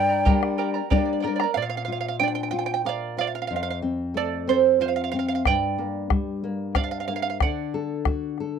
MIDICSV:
0, 0, Header, 1, 6, 480
1, 0, Start_track
1, 0, Key_signature, -2, "minor"
1, 0, Tempo, 648649
1, 1148, Time_signature, 3, 2, 24, 8
1, 6357, End_track
2, 0, Start_track
2, 0, Title_t, "Quena"
2, 0, Program_c, 0, 77
2, 0, Note_on_c, 0, 79, 108
2, 647, Note_off_c, 0, 79, 0
2, 6357, End_track
3, 0, Start_track
3, 0, Title_t, "Charango"
3, 0, Program_c, 1, 24
3, 66, Note_on_c, 1, 82, 52
3, 72, Note_on_c, 1, 74, 49
3, 80, Note_on_c, 1, 70, 48
3, 182, Note_off_c, 1, 70, 0
3, 182, Note_off_c, 1, 74, 0
3, 186, Note_on_c, 1, 67, 93
3, 187, Note_off_c, 1, 82, 0
3, 191, Note_on_c, 1, 70, 89
3, 191, Note_on_c, 1, 74, 89
3, 192, Note_on_c, 1, 79, 95
3, 196, Note_on_c, 1, 82, 98
3, 420, Note_off_c, 1, 79, 0
3, 421, Note_off_c, 1, 70, 0
3, 426, Note_off_c, 1, 74, 0
3, 427, Note_off_c, 1, 67, 0
3, 428, Note_off_c, 1, 82, 0
3, 429, Note_on_c, 1, 79, 65
3, 430, Note_on_c, 1, 70, 71
3, 433, Note_off_c, 1, 70, 0
3, 433, Note_on_c, 1, 70, 57
3, 435, Note_on_c, 1, 74, 72
3, 437, Note_on_c, 1, 82, 70
3, 438, Note_on_c, 1, 67, 56
3, 539, Note_off_c, 1, 82, 0
3, 544, Note_off_c, 1, 74, 0
3, 548, Note_on_c, 1, 82, 55
3, 549, Note_off_c, 1, 79, 0
3, 550, Note_off_c, 1, 70, 0
3, 553, Note_on_c, 1, 74, 54
3, 558, Note_on_c, 1, 70, 47
3, 657, Note_off_c, 1, 67, 0
3, 659, Note_off_c, 1, 74, 0
3, 665, Note_off_c, 1, 70, 0
3, 668, Note_off_c, 1, 82, 0
3, 668, Note_on_c, 1, 74, 79
3, 671, Note_on_c, 1, 67, 81
3, 671, Note_on_c, 1, 79, 82
3, 674, Note_on_c, 1, 70, 81
3, 677, Note_on_c, 1, 82, 92
3, 679, Note_off_c, 1, 70, 0
3, 679, Note_on_c, 1, 70, 65
3, 680, Note_off_c, 1, 74, 0
3, 680, Note_on_c, 1, 74, 87
3, 711, Note_off_c, 1, 74, 0
3, 720, Note_on_c, 1, 74, 57
3, 726, Note_off_c, 1, 70, 0
3, 771, Note_off_c, 1, 74, 0
3, 780, Note_on_c, 1, 74, 61
3, 825, Note_off_c, 1, 74, 0
3, 834, Note_on_c, 1, 74, 60
3, 881, Note_off_c, 1, 74, 0
3, 887, Note_off_c, 1, 67, 0
3, 890, Note_on_c, 1, 74, 68
3, 897, Note_off_c, 1, 79, 0
3, 905, Note_off_c, 1, 82, 0
3, 906, Note_off_c, 1, 74, 0
3, 906, Note_on_c, 1, 79, 64
3, 912, Note_on_c, 1, 70, 59
3, 914, Note_on_c, 1, 82, 65
3, 915, Note_on_c, 1, 74, 74
3, 934, Note_off_c, 1, 74, 0
3, 943, Note_on_c, 1, 74, 60
3, 996, Note_off_c, 1, 74, 0
3, 1005, Note_on_c, 1, 74, 64
3, 1022, Note_off_c, 1, 82, 0
3, 1027, Note_off_c, 1, 79, 0
3, 1029, Note_off_c, 1, 74, 0
3, 1030, Note_off_c, 1, 70, 0
3, 1031, Note_on_c, 1, 82, 53
3, 1038, Note_on_c, 1, 74, 51
3, 1042, Note_on_c, 1, 70, 46
3, 1053, Note_off_c, 1, 74, 0
3, 1061, Note_on_c, 1, 74, 54
3, 1114, Note_off_c, 1, 74, 0
3, 1140, Note_on_c, 1, 77, 68
3, 1150, Note_off_c, 1, 82, 0
3, 1155, Note_off_c, 1, 70, 0
3, 1161, Note_off_c, 1, 77, 0
3, 1164, Note_on_c, 1, 74, 63
3, 1201, Note_on_c, 1, 77, 60
3, 1209, Note_off_c, 1, 74, 0
3, 1246, Note_off_c, 1, 77, 0
3, 1255, Note_on_c, 1, 77, 63
3, 1303, Note_off_c, 1, 77, 0
3, 1311, Note_on_c, 1, 77, 54
3, 1359, Note_off_c, 1, 77, 0
3, 1368, Note_on_c, 1, 77, 61
3, 1415, Note_off_c, 1, 77, 0
3, 1424, Note_on_c, 1, 77, 56
3, 1475, Note_off_c, 1, 77, 0
3, 1484, Note_on_c, 1, 77, 59
3, 1534, Note_off_c, 1, 77, 0
3, 1542, Note_on_c, 1, 77, 52
3, 1596, Note_off_c, 1, 77, 0
3, 1625, Note_on_c, 1, 79, 80
3, 1651, Note_on_c, 1, 74, 62
3, 1676, Note_off_c, 1, 79, 0
3, 1694, Note_off_c, 1, 74, 0
3, 1739, Note_on_c, 1, 79, 71
3, 1791, Note_off_c, 1, 79, 0
3, 1800, Note_on_c, 1, 79, 52
3, 1847, Note_off_c, 1, 79, 0
3, 1856, Note_on_c, 1, 79, 69
3, 1905, Note_off_c, 1, 79, 0
3, 1914, Note_on_c, 1, 79, 60
3, 1960, Note_off_c, 1, 79, 0
3, 1969, Note_on_c, 1, 79, 64
3, 2017, Note_off_c, 1, 79, 0
3, 2026, Note_on_c, 1, 79, 57
3, 2078, Note_off_c, 1, 79, 0
3, 2119, Note_on_c, 1, 77, 72
3, 2137, Note_on_c, 1, 74, 57
3, 2339, Note_off_c, 1, 77, 0
3, 2349, Note_off_c, 1, 74, 0
3, 2357, Note_on_c, 1, 77, 69
3, 2374, Note_on_c, 1, 74, 58
3, 2407, Note_off_c, 1, 77, 0
3, 2416, Note_off_c, 1, 74, 0
3, 2422, Note_on_c, 1, 77, 48
3, 2468, Note_off_c, 1, 77, 0
3, 2480, Note_on_c, 1, 77, 59
3, 2521, Note_off_c, 1, 77, 0
3, 2529, Note_on_c, 1, 77, 50
3, 2562, Note_off_c, 1, 77, 0
3, 2570, Note_on_c, 1, 77, 54
3, 2626, Note_off_c, 1, 77, 0
3, 2634, Note_on_c, 1, 77, 54
3, 2676, Note_off_c, 1, 77, 0
3, 2685, Note_on_c, 1, 77, 61
3, 2733, Note_off_c, 1, 77, 0
3, 2742, Note_on_c, 1, 77, 59
3, 2797, Note_off_c, 1, 77, 0
3, 3086, Note_on_c, 1, 69, 61
3, 3086, Note_on_c, 1, 74, 63
3, 3302, Note_off_c, 1, 74, 0
3, 3304, Note_off_c, 1, 69, 0
3, 3323, Note_on_c, 1, 72, 74
3, 3331, Note_on_c, 1, 69, 58
3, 3546, Note_off_c, 1, 69, 0
3, 3556, Note_off_c, 1, 72, 0
3, 3559, Note_on_c, 1, 77, 67
3, 3565, Note_on_c, 1, 72, 63
3, 3603, Note_off_c, 1, 77, 0
3, 3612, Note_off_c, 1, 72, 0
3, 3612, Note_on_c, 1, 77, 54
3, 3661, Note_off_c, 1, 77, 0
3, 3670, Note_on_c, 1, 77, 61
3, 3720, Note_off_c, 1, 77, 0
3, 3729, Note_on_c, 1, 77, 60
3, 3777, Note_off_c, 1, 77, 0
3, 3786, Note_on_c, 1, 77, 68
3, 3832, Note_off_c, 1, 77, 0
3, 3840, Note_on_c, 1, 77, 54
3, 3896, Note_off_c, 1, 77, 0
3, 3911, Note_on_c, 1, 77, 65
3, 3950, Note_off_c, 1, 77, 0
3, 3959, Note_on_c, 1, 77, 54
3, 4012, Note_off_c, 1, 77, 0
3, 4046, Note_on_c, 1, 79, 81
3, 4050, Note_on_c, 1, 74, 75
3, 4970, Note_off_c, 1, 79, 0
3, 4972, Note_off_c, 1, 74, 0
3, 4998, Note_on_c, 1, 77, 76
3, 5004, Note_on_c, 1, 74, 58
3, 5050, Note_off_c, 1, 77, 0
3, 5051, Note_off_c, 1, 74, 0
3, 5059, Note_on_c, 1, 77, 54
3, 5106, Note_off_c, 1, 77, 0
3, 5115, Note_on_c, 1, 77, 60
3, 5168, Note_off_c, 1, 77, 0
3, 5181, Note_on_c, 1, 77, 57
3, 5228, Note_off_c, 1, 77, 0
3, 5237, Note_on_c, 1, 77, 63
3, 5285, Note_off_c, 1, 77, 0
3, 5297, Note_on_c, 1, 77, 58
3, 5336, Note_off_c, 1, 77, 0
3, 5345, Note_on_c, 1, 77, 63
3, 5391, Note_off_c, 1, 77, 0
3, 5400, Note_on_c, 1, 77, 51
3, 5452, Note_off_c, 1, 77, 0
3, 5492, Note_on_c, 1, 74, 60
3, 5494, Note_on_c, 1, 78, 68
3, 6357, Note_off_c, 1, 74, 0
3, 6357, Note_off_c, 1, 78, 0
3, 6357, End_track
4, 0, Start_track
4, 0, Title_t, "Pan flute"
4, 0, Program_c, 2, 75
4, 0, Note_on_c, 2, 74, 99
4, 639, Note_off_c, 2, 74, 0
4, 6357, End_track
5, 0, Start_track
5, 0, Title_t, "Nylon-string guitar"
5, 0, Program_c, 3, 24
5, 0, Note_on_c, 3, 43, 70
5, 179, Note_off_c, 3, 43, 0
5, 201, Note_on_c, 3, 55, 54
5, 202, Note_on_c, 3, 58, 48
5, 205, Note_on_c, 3, 62, 59
5, 580, Note_off_c, 3, 55, 0
5, 580, Note_off_c, 3, 58, 0
5, 583, Note_off_c, 3, 62, 0
5, 676, Note_on_c, 3, 58, 49
5, 679, Note_on_c, 3, 55, 51
5, 679, Note_on_c, 3, 62, 59
5, 680, Note_on_c, 3, 74, 74
5, 896, Note_off_c, 3, 74, 0
5, 921, Note_on_c, 3, 70, 66
5, 1058, Note_off_c, 3, 58, 0
5, 1059, Note_off_c, 3, 55, 0
5, 1059, Note_off_c, 3, 62, 0
5, 1138, Note_off_c, 3, 70, 0
5, 1155, Note_on_c, 3, 46, 53
5, 1391, Note_on_c, 3, 65, 48
5, 1623, Note_off_c, 3, 65, 0
5, 1630, Note_on_c, 3, 62, 48
5, 1863, Note_off_c, 3, 62, 0
5, 1868, Note_on_c, 3, 65, 50
5, 2102, Note_off_c, 3, 65, 0
5, 2110, Note_on_c, 3, 70, 47
5, 2344, Note_off_c, 3, 70, 0
5, 2348, Note_on_c, 3, 65, 42
5, 2565, Note_off_c, 3, 46, 0
5, 2583, Note_off_c, 3, 65, 0
5, 2595, Note_on_c, 3, 41, 61
5, 2829, Note_on_c, 3, 60, 49
5, 3064, Note_off_c, 3, 60, 0
5, 3065, Note_on_c, 3, 57, 51
5, 3302, Note_off_c, 3, 57, 0
5, 3312, Note_on_c, 3, 60, 51
5, 3546, Note_off_c, 3, 60, 0
5, 3552, Note_on_c, 3, 65, 50
5, 3786, Note_off_c, 3, 65, 0
5, 3799, Note_on_c, 3, 60, 49
5, 4006, Note_off_c, 3, 41, 0
5, 4029, Note_off_c, 3, 60, 0
5, 4049, Note_on_c, 3, 43, 64
5, 4280, Note_on_c, 3, 58, 48
5, 4510, Note_off_c, 3, 58, 0
5, 4514, Note_on_c, 3, 55, 52
5, 4747, Note_off_c, 3, 55, 0
5, 4763, Note_on_c, 3, 58, 47
5, 4991, Note_off_c, 3, 58, 0
5, 5005, Note_on_c, 3, 62, 52
5, 5232, Note_off_c, 3, 62, 0
5, 5242, Note_on_c, 3, 58, 47
5, 5451, Note_off_c, 3, 43, 0
5, 5470, Note_off_c, 3, 58, 0
5, 5491, Note_on_c, 3, 50, 55
5, 5729, Note_on_c, 3, 69, 50
5, 5953, Note_off_c, 3, 69, 0
5, 5971, Note_on_c, 3, 66, 48
5, 6194, Note_off_c, 3, 66, 0
5, 6218, Note_on_c, 3, 69, 46
5, 6357, Note_off_c, 3, 50, 0
5, 6357, Note_off_c, 3, 69, 0
5, 6357, End_track
6, 0, Start_track
6, 0, Title_t, "Bombo"
6, 194, Note_on_c, 9, 43, 72
6, 268, Note_off_c, 9, 43, 0
6, 316, Note_on_c, 9, 37, 51
6, 390, Note_off_c, 9, 37, 0
6, 675, Note_on_c, 9, 43, 60
6, 749, Note_off_c, 9, 43, 0
6, 918, Note_on_c, 9, 37, 21
6, 992, Note_off_c, 9, 37, 0
6, 1034, Note_on_c, 9, 37, 51
6, 1108, Note_off_c, 9, 37, 0
6, 4036, Note_on_c, 9, 37, 63
6, 4036, Note_on_c, 9, 43, 64
6, 4110, Note_off_c, 9, 37, 0
6, 4110, Note_off_c, 9, 43, 0
6, 4516, Note_on_c, 9, 37, 57
6, 4516, Note_on_c, 9, 43, 60
6, 4590, Note_off_c, 9, 37, 0
6, 4590, Note_off_c, 9, 43, 0
6, 4994, Note_on_c, 9, 37, 64
6, 4994, Note_on_c, 9, 43, 52
6, 5068, Note_off_c, 9, 37, 0
6, 5068, Note_off_c, 9, 43, 0
6, 5243, Note_on_c, 9, 37, 19
6, 5317, Note_off_c, 9, 37, 0
6, 5479, Note_on_c, 9, 37, 64
6, 5479, Note_on_c, 9, 43, 64
6, 5553, Note_off_c, 9, 37, 0
6, 5553, Note_off_c, 9, 43, 0
6, 5960, Note_on_c, 9, 37, 56
6, 5960, Note_on_c, 9, 43, 51
6, 6034, Note_off_c, 9, 37, 0
6, 6034, Note_off_c, 9, 43, 0
6, 6199, Note_on_c, 9, 37, 18
6, 6273, Note_off_c, 9, 37, 0
6, 6357, End_track
0, 0, End_of_file